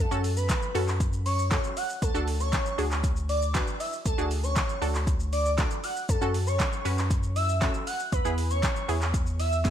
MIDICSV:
0, 0, Header, 1, 5, 480
1, 0, Start_track
1, 0, Key_signature, 3, "minor"
1, 0, Tempo, 508475
1, 1908, Time_signature, 4, 2, 24, 8
1, 9158, End_track
2, 0, Start_track
2, 0, Title_t, "Digital synth lead"
2, 0, Program_c, 0, 84
2, 0, Note_on_c, 0, 69, 107
2, 160, Note_off_c, 0, 69, 0
2, 346, Note_on_c, 0, 71, 79
2, 686, Note_off_c, 0, 71, 0
2, 1186, Note_on_c, 0, 73, 80
2, 1360, Note_off_c, 0, 73, 0
2, 1427, Note_on_c, 0, 73, 84
2, 1514, Note_off_c, 0, 73, 0
2, 1667, Note_on_c, 0, 78, 81
2, 1754, Note_off_c, 0, 78, 0
2, 1906, Note_on_c, 0, 69, 108
2, 2080, Note_off_c, 0, 69, 0
2, 2268, Note_on_c, 0, 73, 86
2, 2607, Note_off_c, 0, 73, 0
2, 3108, Note_on_c, 0, 74, 85
2, 3282, Note_off_c, 0, 74, 0
2, 3347, Note_on_c, 0, 74, 75
2, 3434, Note_off_c, 0, 74, 0
2, 3587, Note_on_c, 0, 76, 74
2, 3674, Note_off_c, 0, 76, 0
2, 3825, Note_on_c, 0, 69, 107
2, 4000, Note_off_c, 0, 69, 0
2, 4188, Note_on_c, 0, 73, 78
2, 4526, Note_off_c, 0, 73, 0
2, 5028, Note_on_c, 0, 74, 81
2, 5201, Note_off_c, 0, 74, 0
2, 5267, Note_on_c, 0, 74, 86
2, 5354, Note_off_c, 0, 74, 0
2, 5507, Note_on_c, 0, 78, 81
2, 5594, Note_off_c, 0, 78, 0
2, 5747, Note_on_c, 0, 69, 101
2, 5921, Note_off_c, 0, 69, 0
2, 6107, Note_on_c, 0, 73, 82
2, 6446, Note_off_c, 0, 73, 0
2, 6946, Note_on_c, 0, 76, 88
2, 7120, Note_off_c, 0, 76, 0
2, 7186, Note_on_c, 0, 76, 78
2, 7274, Note_off_c, 0, 76, 0
2, 7427, Note_on_c, 0, 78, 76
2, 7514, Note_off_c, 0, 78, 0
2, 7666, Note_on_c, 0, 71, 116
2, 7840, Note_off_c, 0, 71, 0
2, 8028, Note_on_c, 0, 73, 75
2, 8366, Note_off_c, 0, 73, 0
2, 8867, Note_on_c, 0, 76, 84
2, 9041, Note_off_c, 0, 76, 0
2, 9108, Note_on_c, 0, 76, 80
2, 9158, Note_off_c, 0, 76, 0
2, 9158, End_track
3, 0, Start_track
3, 0, Title_t, "Synth pluck"
3, 0, Program_c, 1, 84
3, 106, Note_on_c, 1, 61, 83
3, 108, Note_on_c, 1, 66, 80
3, 111, Note_on_c, 1, 69, 95
3, 503, Note_off_c, 1, 61, 0
3, 504, Note_off_c, 1, 66, 0
3, 506, Note_off_c, 1, 69, 0
3, 705, Note_on_c, 1, 61, 73
3, 707, Note_on_c, 1, 66, 68
3, 710, Note_on_c, 1, 69, 86
3, 1182, Note_off_c, 1, 61, 0
3, 1183, Note_off_c, 1, 66, 0
3, 1185, Note_off_c, 1, 69, 0
3, 1424, Note_on_c, 1, 61, 75
3, 1427, Note_on_c, 1, 66, 70
3, 1429, Note_on_c, 1, 69, 84
3, 1822, Note_off_c, 1, 61, 0
3, 1824, Note_off_c, 1, 66, 0
3, 1825, Note_off_c, 1, 69, 0
3, 2025, Note_on_c, 1, 62, 92
3, 2027, Note_on_c, 1, 66, 81
3, 2029, Note_on_c, 1, 69, 98
3, 2423, Note_off_c, 1, 62, 0
3, 2424, Note_off_c, 1, 66, 0
3, 2425, Note_off_c, 1, 69, 0
3, 2625, Note_on_c, 1, 62, 77
3, 2628, Note_on_c, 1, 66, 66
3, 2630, Note_on_c, 1, 68, 84
3, 3102, Note_off_c, 1, 62, 0
3, 3103, Note_off_c, 1, 66, 0
3, 3104, Note_off_c, 1, 68, 0
3, 3345, Note_on_c, 1, 62, 88
3, 3347, Note_on_c, 1, 66, 80
3, 3349, Note_on_c, 1, 71, 97
3, 3743, Note_off_c, 1, 62, 0
3, 3744, Note_off_c, 1, 66, 0
3, 3745, Note_off_c, 1, 71, 0
3, 3947, Note_on_c, 1, 62, 85
3, 3949, Note_on_c, 1, 66, 78
3, 3951, Note_on_c, 1, 68, 92
3, 4344, Note_off_c, 1, 62, 0
3, 4345, Note_off_c, 1, 66, 0
3, 4346, Note_off_c, 1, 68, 0
3, 4546, Note_on_c, 1, 62, 74
3, 4548, Note_on_c, 1, 66, 71
3, 4550, Note_on_c, 1, 69, 79
3, 5022, Note_off_c, 1, 62, 0
3, 5023, Note_off_c, 1, 66, 0
3, 5024, Note_off_c, 1, 69, 0
3, 5267, Note_on_c, 1, 62, 75
3, 5269, Note_on_c, 1, 66, 69
3, 5272, Note_on_c, 1, 69, 81
3, 5664, Note_off_c, 1, 62, 0
3, 5665, Note_off_c, 1, 66, 0
3, 5666, Note_off_c, 1, 69, 0
3, 5866, Note_on_c, 1, 61, 87
3, 5869, Note_on_c, 1, 66, 80
3, 5871, Note_on_c, 1, 69, 97
3, 6263, Note_off_c, 1, 61, 0
3, 6265, Note_off_c, 1, 66, 0
3, 6266, Note_off_c, 1, 69, 0
3, 6467, Note_on_c, 1, 61, 78
3, 6470, Note_on_c, 1, 66, 69
3, 6472, Note_on_c, 1, 71, 80
3, 6943, Note_off_c, 1, 61, 0
3, 6944, Note_off_c, 1, 66, 0
3, 6945, Note_off_c, 1, 71, 0
3, 7187, Note_on_c, 1, 61, 89
3, 7189, Note_on_c, 1, 66, 82
3, 7191, Note_on_c, 1, 69, 100
3, 7584, Note_off_c, 1, 61, 0
3, 7585, Note_off_c, 1, 66, 0
3, 7586, Note_off_c, 1, 69, 0
3, 7786, Note_on_c, 1, 59, 82
3, 7790, Note_on_c, 1, 64, 80
3, 7791, Note_on_c, 1, 68, 93
3, 8183, Note_off_c, 1, 59, 0
3, 8185, Note_off_c, 1, 64, 0
3, 8186, Note_off_c, 1, 68, 0
3, 8387, Note_on_c, 1, 59, 73
3, 8389, Note_on_c, 1, 64, 65
3, 8391, Note_on_c, 1, 68, 84
3, 8863, Note_off_c, 1, 59, 0
3, 8864, Note_off_c, 1, 64, 0
3, 8865, Note_off_c, 1, 68, 0
3, 9106, Note_on_c, 1, 59, 76
3, 9109, Note_on_c, 1, 64, 68
3, 9111, Note_on_c, 1, 68, 82
3, 9158, Note_off_c, 1, 59, 0
3, 9158, Note_off_c, 1, 64, 0
3, 9158, Note_off_c, 1, 68, 0
3, 9158, End_track
4, 0, Start_track
4, 0, Title_t, "Sub bass"
4, 0, Program_c, 2, 38
4, 108, Note_on_c, 2, 42, 92
4, 504, Note_off_c, 2, 42, 0
4, 707, Note_on_c, 2, 42, 87
4, 1500, Note_off_c, 2, 42, 0
4, 1908, Note_on_c, 2, 38, 114
4, 1987, Note_off_c, 2, 38, 0
4, 2028, Note_on_c, 2, 38, 86
4, 2424, Note_off_c, 2, 38, 0
4, 2628, Note_on_c, 2, 38, 90
4, 3421, Note_off_c, 2, 38, 0
4, 3828, Note_on_c, 2, 38, 113
4, 3907, Note_off_c, 2, 38, 0
4, 3949, Note_on_c, 2, 38, 87
4, 4345, Note_off_c, 2, 38, 0
4, 4548, Note_on_c, 2, 38, 92
4, 5341, Note_off_c, 2, 38, 0
4, 5749, Note_on_c, 2, 42, 116
4, 5828, Note_off_c, 2, 42, 0
4, 5868, Note_on_c, 2, 42, 90
4, 6265, Note_off_c, 2, 42, 0
4, 6469, Note_on_c, 2, 42, 90
4, 7262, Note_off_c, 2, 42, 0
4, 7669, Note_on_c, 2, 40, 114
4, 7748, Note_off_c, 2, 40, 0
4, 7788, Note_on_c, 2, 40, 92
4, 8184, Note_off_c, 2, 40, 0
4, 8389, Note_on_c, 2, 40, 92
4, 9158, Note_off_c, 2, 40, 0
4, 9158, End_track
5, 0, Start_track
5, 0, Title_t, "Drums"
5, 109, Note_on_c, 9, 82, 65
5, 203, Note_off_c, 9, 82, 0
5, 229, Note_on_c, 9, 46, 75
5, 229, Note_on_c, 9, 82, 54
5, 323, Note_off_c, 9, 46, 0
5, 323, Note_off_c, 9, 82, 0
5, 347, Note_on_c, 9, 82, 84
5, 441, Note_off_c, 9, 82, 0
5, 466, Note_on_c, 9, 42, 86
5, 466, Note_on_c, 9, 82, 86
5, 468, Note_on_c, 9, 38, 96
5, 468, Note_on_c, 9, 39, 118
5, 469, Note_on_c, 9, 36, 116
5, 560, Note_off_c, 9, 42, 0
5, 560, Note_off_c, 9, 82, 0
5, 562, Note_off_c, 9, 38, 0
5, 562, Note_off_c, 9, 39, 0
5, 563, Note_off_c, 9, 36, 0
5, 589, Note_on_c, 9, 82, 53
5, 683, Note_off_c, 9, 82, 0
5, 710, Note_on_c, 9, 46, 74
5, 710, Note_on_c, 9, 82, 51
5, 805, Note_off_c, 9, 46, 0
5, 805, Note_off_c, 9, 82, 0
5, 830, Note_on_c, 9, 82, 64
5, 831, Note_on_c, 9, 39, 67
5, 924, Note_off_c, 9, 82, 0
5, 925, Note_off_c, 9, 39, 0
5, 946, Note_on_c, 9, 36, 117
5, 948, Note_on_c, 9, 42, 78
5, 948, Note_on_c, 9, 82, 76
5, 1040, Note_off_c, 9, 36, 0
5, 1043, Note_off_c, 9, 42, 0
5, 1043, Note_off_c, 9, 82, 0
5, 1067, Note_on_c, 9, 82, 53
5, 1161, Note_off_c, 9, 82, 0
5, 1188, Note_on_c, 9, 46, 70
5, 1188, Note_on_c, 9, 82, 48
5, 1283, Note_off_c, 9, 46, 0
5, 1283, Note_off_c, 9, 82, 0
5, 1310, Note_on_c, 9, 82, 78
5, 1404, Note_off_c, 9, 82, 0
5, 1427, Note_on_c, 9, 42, 76
5, 1427, Note_on_c, 9, 82, 76
5, 1430, Note_on_c, 9, 36, 127
5, 1430, Note_on_c, 9, 39, 127
5, 1431, Note_on_c, 9, 38, 106
5, 1521, Note_off_c, 9, 42, 0
5, 1521, Note_off_c, 9, 82, 0
5, 1525, Note_off_c, 9, 36, 0
5, 1525, Note_off_c, 9, 38, 0
5, 1525, Note_off_c, 9, 39, 0
5, 1546, Note_on_c, 9, 82, 61
5, 1641, Note_off_c, 9, 82, 0
5, 1670, Note_on_c, 9, 46, 88
5, 1670, Note_on_c, 9, 82, 65
5, 1764, Note_off_c, 9, 46, 0
5, 1764, Note_off_c, 9, 82, 0
5, 1789, Note_on_c, 9, 82, 81
5, 1883, Note_off_c, 9, 82, 0
5, 1908, Note_on_c, 9, 36, 110
5, 1909, Note_on_c, 9, 42, 90
5, 1909, Note_on_c, 9, 82, 88
5, 2002, Note_off_c, 9, 36, 0
5, 2003, Note_off_c, 9, 42, 0
5, 2003, Note_off_c, 9, 82, 0
5, 2029, Note_on_c, 9, 82, 60
5, 2123, Note_off_c, 9, 82, 0
5, 2148, Note_on_c, 9, 46, 75
5, 2148, Note_on_c, 9, 82, 53
5, 2243, Note_off_c, 9, 46, 0
5, 2243, Note_off_c, 9, 82, 0
5, 2267, Note_on_c, 9, 82, 80
5, 2362, Note_off_c, 9, 82, 0
5, 2386, Note_on_c, 9, 42, 84
5, 2386, Note_on_c, 9, 82, 87
5, 2388, Note_on_c, 9, 38, 91
5, 2388, Note_on_c, 9, 39, 113
5, 2389, Note_on_c, 9, 36, 119
5, 2480, Note_off_c, 9, 42, 0
5, 2480, Note_off_c, 9, 82, 0
5, 2482, Note_off_c, 9, 39, 0
5, 2483, Note_off_c, 9, 36, 0
5, 2483, Note_off_c, 9, 38, 0
5, 2509, Note_on_c, 9, 82, 54
5, 2603, Note_off_c, 9, 82, 0
5, 2630, Note_on_c, 9, 46, 73
5, 2630, Note_on_c, 9, 82, 54
5, 2725, Note_off_c, 9, 46, 0
5, 2725, Note_off_c, 9, 82, 0
5, 2749, Note_on_c, 9, 82, 64
5, 2750, Note_on_c, 9, 39, 72
5, 2843, Note_off_c, 9, 82, 0
5, 2845, Note_off_c, 9, 39, 0
5, 2866, Note_on_c, 9, 36, 117
5, 2868, Note_on_c, 9, 42, 75
5, 2868, Note_on_c, 9, 82, 78
5, 2960, Note_off_c, 9, 36, 0
5, 2962, Note_off_c, 9, 42, 0
5, 2962, Note_off_c, 9, 82, 0
5, 2987, Note_on_c, 9, 82, 52
5, 3081, Note_off_c, 9, 82, 0
5, 3108, Note_on_c, 9, 46, 65
5, 3108, Note_on_c, 9, 82, 48
5, 3202, Note_off_c, 9, 46, 0
5, 3202, Note_off_c, 9, 82, 0
5, 3229, Note_on_c, 9, 82, 75
5, 3324, Note_off_c, 9, 82, 0
5, 3347, Note_on_c, 9, 42, 77
5, 3347, Note_on_c, 9, 82, 79
5, 3350, Note_on_c, 9, 39, 127
5, 3351, Note_on_c, 9, 36, 127
5, 3351, Note_on_c, 9, 38, 100
5, 3441, Note_off_c, 9, 42, 0
5, 3441, Note_off_c, 9, 82, 0
5, 3445, Note_off_c, 9, 36, 0
5, 3445, Note_off_c, 9, 38, 0
5, 3445, Note_off_c, 9, 39, 0
5, 3466, Note_on_c, 9, 82, 63
5, 3561, Note_off_c, 9, 82, 0
5, 3589, Note_on_c, 9, 46, 86
5, 3589, Note_on_c, 9, 82, 63
5, 3684, Note_off_c, 9, 46, 0
5, 3684, Note_off_c, 9, 82, 0
5, 3709, Note_on_c, 9, 82, 80
5, 3803, Note_off_c, 9, 82, 0
5, 3828, Note_on_c, 9, 36, 111
5, 3828, Note_on_c, 9, 42, 89
5, 3828, Note_on_c, 9, 82, 88
5, 3923, Note_off_c, 9, 36, 0
5, 3923, Note_off_c, 9, 42, 0
5, 3923, Note_off_c, 9, 82, 0
5, 3949, Note_on_c, 9, 82, 64
5, 4043, Note_off_c, 9, 82, 0
5, 4068, Note_on_c, 9, 46, 72
5, 4068, Note_on_c, 9, 82, 56
5, 4162, Note_off_c, 9, 46, 0
5, 4162, Note_off_c, 9, 82, 0
5, 4188, Note_on_c, 9, 82, 80
5, 4282, Note_off_c, 9, 82, 0
5, 4307, Note_on_c, 9, 42, 88
5, 4307, Note_on_c, 9, 82, 87
5, 4309, Note_on_c, 9, 36, 123
5, 4309, Note_on_c, 9, 38, 93
5, 4309, Note_on_c, 9, 39, 117
5, 4401, Note_off_c, 9, 42, 0
5, 4401, Note_off_c, 9, 82, 0
5, 4403, Note_off_c, 9, 38, 0
5, 4403, Note_off_c, 9, 39, 0
5, 4404, Note_off_c, 9, 36, 0
5, 4429, Note_on_c, 9, 82, 53
5, 4524, Note_off_c, 9, 82, 0
5, 4551, Note_on_c, 9, 46, 71
5, 4551, Note_on_c, 9, 82, 53
5, 4646, Note_off_c, 9, 46, 0
5, 4646, Note_off_c, 9, 82, 0
5, 4669, Note_on_c, 9, 82, 66
5, 4671, Note_on_c, 9, 39, 69
5, 4764, Note_off_c, 9, 82, 0
5, 4765, Note_off_c, 9, 39, 0
5, 4787, Note_on_c, 9, 36, 119
5, 4789, Note_on_c, 9, 42, 77
5, 4789, Note_on_c, 9, 82, 79
5, 4881, Note_off_c, 9, 36, 0
5, 4883, Note_off_c, 9, 42, 0
5, 4883, Note_off_c, 9, 82, 0
5, 4908, Note_on_c, 9, 82, 52
5, 5002, Note_off_c, 9, 82, 0
5, 5029, Note_on_c, 9, 46, 68
5, 5029, Note_on_c, 9, 82, 50
5, 5123, Note_off_c, 9, 46, 0
5, 5123, Note_off_c, 9, 82, 0
5, 5150, Note_on_c, 9, 82, 80
5, 5244, Note_off_c, 9, 82, 0
5, 5268, Note_on_c, 9, 42, 74
5, 5268, Note_on_c, 9, 82, 78
5, 5271, Note_on_c, 9, 36, 127
5, 5272, Note_on_c, 9, 38, 100
5, 5272, Note_on_c, 9, 39, 122
5, 5362, Note_off_c, 9, 42, 0
5, 5362, Note_off_c, 9, 82, 0
5, 5366, Note_off_c, 9, 36, 0
5, 5366, Note_off_c, 9, 38, 0
5, 5366, Note_off_c, 9, 39, 0
5, 5387, Note_on_c, 9, 82, 61
5, 5481, Note_off_c, 9, 82, 0
5, 5510, Note_on_c, 9, 46, 87
5, 5510, Note_on_c, 9, 82, 62
5, 5605, Note_off_c, 9, 46, 0
5, 5605, Note_off_c, 9, 82, 0
5, 5629, Note_on_c, 9, 82, 84
5, 5724, Note_off_c, 9, 82, 0
5, 5749, Note_on_c, 9, 36, 109
5, 5749, Note_on_c, 9, 42, 88
5, 5749, Note_on_c, 9, 82, 89
5, 5843, Note_off_c, 9, 36, 0
5, 5843, Note_off_c, 9, 42, 0
5, 5843, Note_off_c, 9, 82, 0
5, 5870, Note_on_c, 9, 82, 64
5, 5964, Note_off_c, 9, 82, 0
5, 5989, Note_on_c, 9, 46, 76
5, 5989, Note_on_c, 9, 82, 55
5, 6083, Note_off_c, 9, 46, 0
5, 6083, Note_off_c, 9, 82, 0
5, 6108, Note_on_c, 9, 82, 81
5, 6202, Note_off_c, 9, 82, 0
5, 6227, Note_on_c, 9, 42, 88
5, 6227, Note_on_c, 9, 82, 86
5, 6228, Note_on_c, 9, 39, 116
5, 6229, Note_on_c, 9, 38, 88
5, 6230, Note_on_c, 9, 36, 116
5, 6321, Note_off_c, 9, 42, 0
5, 6321, Note_off_c, 9, 82, 0
5, 6323, Note_off_c, 9, 38, 0
5, 6323, Note_off_c, 9, 39, 0
5, 6324, Note_off_c, 9, 36, 0
5, 6350, Note_on_c, 9, 82, 53
5, 6444, Note_off_c, 9, 82, 0
5, 6471, Note_on_c, 9, 46, 75
5, 6471, Note_on_c, 9, 82, 53
5, 6565, Note_off_c, 9, 46, 0
5, 6565, Note_off_c, 9, 82, 0
5, 6590, Note_on_c, 9, 82, 61
5, 6591, Note_on_c, 9, 39, 67
5, 6684, Note_off_c, 9, 82, 0
5, 6686, Note_off_c, 9, 39, 0
5, 6707, Note_on_c, 9, 36, 114
5, 6709, Note_on_c, 9, 42, 79
5, 6709, Note_on_c, 9, 82, 79
5, 6801, Note_off_c, 9, 36, 0
5, 6803, Note_off_c, 9, 42, 0
5, 6803, Note_off_c, 9, 82, 0
5, 6827, Note_on_c, 9, 82, 51
5, 6921, Note_off_c, 9, 82, 0
5, 6948, Note_on_c, 9, 46, 69
5, 6948, Note_on_c, 9, 82, 47
5, 7043, Note_off_c, 9, 46, 0
5, 7043, Note_off_c, 9, 82, 0
5, 7070, Note_on_c, 9, 82, 76
5, 7164, Note_off_c, 9, 82, 0
5, 7187, Note_on_c, 9, 42, 77
5, 7187, Note_on_c, 9, 82, 77
5, 7191, Note_on_c, 9, 36, 124
5, 7191, Note_on_c, 9, 38, 102
5, 7191, Note_on_c, 9, 39, 127
5, 7282, Note_off_c, 9, 42, 0
5, 7282, Note_off_c, 9, 82, 0
5, 7286, Note_off_c, 9, 36, 0
5, 7286, Note_off_c, 9, 38, 0
5, 7286, Note_off_c, 9, 39, 0
5, 7307, Note_on_c, 9, 82, 61
5, 7401, Note_off_c, 9, 82, 0
5, 7430, Note_on_c, 9, 46, 87
5, 7430, Note_on_c, 9, 82, 59
5, 7525, Note_off_c, 9, 46, 0
5, 7525, Note_off_c, 9, 82, 0
5, 7550, Note_on_c, 9, 82, 82
5, 7644, Note_off_c, 9, 82, 0
5, 7669, Note_on_c, 9, 36, 110
5, 7670, Note_on_c, 9, 42, 87
5, 7670, Note_on_c, 9, 82, 86
5, 7763, Note_off_c, 9, 36, 0
5, 7764, Note_off_c, 9, 42, 0
5, 7764, Note_off_c, 9, 82, 0
5, 7790, Note_on_c, 9, 82, 61
5, 7884, Note_off_c, 9, 82, 0
5, 7909, Note_on_c, 9, 46, 75
5, 7909, Note_on_c, 9, 82, 54
5, 8004, Note_off_c, 9, 46, 0
5, 8004, Note_off_c, 9, 82, 0
5, 8028, Note_on_c, 9, 82, 78
5, 8123, Note_off_c, 9, 82, 0
5, 8147, Note_on_c, 9, 42, 91
5, 8147, Note_on_c, 9, 82, 86
5, 8149, Note_on_c, 9, 38, 91
5, 8149, Note_on_c, 9, 39, 120
5, 8150, Note_on_c, 9, 36, 119
5, 8241, Note_off_c, 9, 42, 0
5, 8241, Note_off_c, 9, 82, 0
5, 8243, Note_off_c, 9, 38, 0
5, 8243, Note_off_c, 9, 39, 0
5, 8244, Note_off_c, 9, 36, 0
5, 8270, Note_on_c, 9, 82, 54
5, 8364, Note_off_c, 9, 82, 0
5, 8391, Note_on_c, 9, 46, 76
5, 8391, Note_on_c, 9, 82, 54
5, 8486, Note_off_c, 9, 46, 0
5, 8486, Note_off_c, 9, 82, 0
5, 8510, Note_on_c, 9, 82, 65
5, 8511, Note_on_c, 9, 39, 71
5, 8605, Note_off_c, 9, 82, 0
5, 8606, Note_off_c, 9, 39, 0
5, 8627, Note_on_c, 9, 36, 118
5, 8629, Note_on_c, 9, 42, 80
5, 8629, Note_on_c, 9, 82, 78
5, 8721, Note_off_c, 9, 36, 0
5, 8724, Note_off_c, 9, 42, 0
5, 8724, Note_off_c, 9, 82, 0
5, 8747, Note_on_c, 9, 82, 49
5, 8841, Note_off_c, 9, 82, 0
5, 8869, Note_on_c, 9, 46, 69
5, 8869, Note_on_c, 9, 82, 51
5, 8963, Note_off_c, 9, 46, 0
5, 8963, Note_off_c, 9, 82, 0
5, 8991, Note_on_c, 9, 82, 81
5, 9085, Note_off_c, 9, 82, 0
5, 9108, Note_on_c, 9, 38, 67
5, 9108, Note_on_c, 9, 42, 80
5, 9108, Note_on_c, 9, 82, 75
5, 9111, Note_on_c, 9, 36, 127
5, 9158, Note_off_c, 9, 36, 0
5, 9158, Note_off_c, 9, 38, 0
5, 9158, Note_off_c, 9, 42, 0
5, 9158, Note_off_c, 9, 82, 0
5, 9158, End_track
0, 0, End_of_file